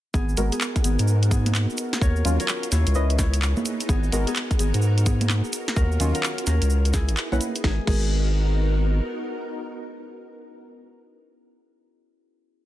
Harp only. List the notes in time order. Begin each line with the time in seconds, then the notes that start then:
0.14 B3 G#4
0.52 B3 G#4
0.84 B3 G#4
1.31 B3 G#4
2.01 A#4 C#5
2.40 A#4 C#5
2.72 E4 C#5
3.19 E4 C#5
3.89 B3 G#4
4.27 B3 G#4
4.59 B3 G#4
5.06 B3 G#4
5.76 F#4 A#4
6.15 F#4 A#4
6.47 C#4 A#4
6.94 E4 G#4
7.64 G#4
7.88 G#4